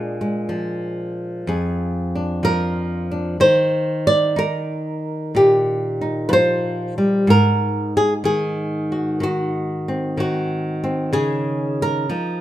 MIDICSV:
0, 0, Header, 1, 2, 480
1, 0, Start_track
1, 0, Tempo, 964630
1, 1693, Time_signature, 4, 2, 24, 8
1, 6174, End_track
2, 0, Start_track
2, 0, Title_t, "Nylon-string guitar"
2, 0, Program_c, 0, 24
2, 0, Note_on_c, 0, 46, 73
2, 0, Note_on_c, 0, 56, 48
2, 0, Note_on_c, 0, 62, 47
2, 0, Note_on_c, 0, 68, 86
2, 98, Note_off_c, 0, 56, 0
2, 104, Note_on_c, 0, 56, 41
2, 243, Note_on_c, 0, 53, 62
2, 733, Note_on_c, 0, 41, 64
2, 734, Note_off_c, 0, 68, 0
2, 735, Note_off_c, 0, 46, 0
2, 740, Note_on_c, 0, 68, 48
2, 1066, Note_off_c, 0, 62, 0
2, 1072, Note_on_c, 0, 62, 45
2, 1203, Note_off_c, 0, 53, 0
2, 1209, Note_on_c, 0, 53, 62
2, 1215, Note_off_c, 0, 68, 0
2, 1217, Note_on_c, 0, 70, 96
2, 1544, Note_off_c, 0, 62, 0
2, 1550, Note_on_c, 0, 62, 43
2, 1673, Note_off_c, 0, 53, 0
2, 1678, Note_off_c, 0, 62, 0
2, 1692, Note_on_c, 0, 51, 68
2, 1693, Note_off_c, 0, 70, 0
2, 1694, Note_off_c, 0, 41, 0
2, 1695, Note_off_c, 0, 56, 0
2, 1695, Note_on_c, 0, 72, 102
2, 2023, Note_off_c, 0, 72, 0
2, 2025, Note_on_c, 0, 74, 98
2, 2170, Note_on_c, 0, 63, 64
2, 2182, Note_on_c, 0, 70, 94
2, 2655, Note_off_c, 0, 74, 0
2, 2659, Note_off_c, 0, 70, 0
2, 2661, Note_on_c, 0, 46, 60
2, 2669, Note_on_c, 0, 67, 87
2, 2990, Note_off_c, 0, 63, 0
2, 2992, Note_on_c, 0, 63, 47
2, 3129, Note_on_c, 0, 71, 78
2, 3130, Note_off_c, 0, 51, 0
2, 3132, Note_on_c, 0, 53, 60
2, 3143, Note_off_c, 0, 71, 0
2, 3149, Note_on_c, 0, 72, 101
2, 3464, Note_off_c, 0, 53, 0
2, 3472, Note_on_c, 0, 55, 63
2, 3601, Note_off_c, 0, 67, 0
2, 3618, Note_off_c, 0, 46, 0
2, 3618, Note_off_c, 0, 55, 0
2, 3619, Note_on_c, 0, 44, 74
2, 3622, Note_off_c, 0, 72, 0
2, 3634, Note_on_c, 0, 70, 96
2, 3955, Note_off_c, 0, 70, 0
2, 3965, Note_on_c, 0, 68, 87
2, 4045, Note_off_c, 0, 68, 0
2, 4099, Note_on_c, 0, 51, 66
2, 4107, Note_on_c, 0, 68, 85
2, 4438, Note_on_c, 0, 66, 44
2, 4573, Note_off_c, 0, 51, 0
2, 4579, Note_on_c, 0, 51, 62
2, 4581, Note_off_c, 0, 66, 0
2, 4594, Note_on_c, 0, 66, 81
2, 4734, Note_off_c, 0, 63, 0
2, 4918, Note_on_c, 0, 60, 44
2, 5057, Note_off_c, 0, 51, 0
2, 5060, Note_off_c, 0, 68, 0
2, 5063, Note_on_c, 0, 51, 59
2, 5064, Note_off_c, 0, 66, 0
2, 5076, Note_on_c, 0, 66, 80
2, 5386, Note_off_c, 0, 60, 0
2, 5392, Note_on_c, 0, 60, 47
2, 5518, Note_off_c, 0, 44, 0
2, 5520, Note_off_c, 0, 60, 0
2, 5536, Note_on_c, 0, 49, 73
2, 5540, Note_on_c, 0, 68, 92
2, 5545, Note_off_c, 0, 66, 0
2, 5867, Note_off_c, 0, 68, 0
2, 5883, Note_on_c, 0, 70, 78
2, 6014, Note_off_c, 0, 49, 0
2, 6016, Note_off_c, 0, 51, 0
2, 6018, Note_on_c, 0, 53, 69
2, 6021, Note_on_c, 0, 63, 51
2, 6174, Note_off_c, 0, 53, 0
2, 6174, Note_off_c, 0, 63, 0
2, 6174, Note_off_c, 0, 70, 0
2, 6174, End_track
0, 0, End_of_file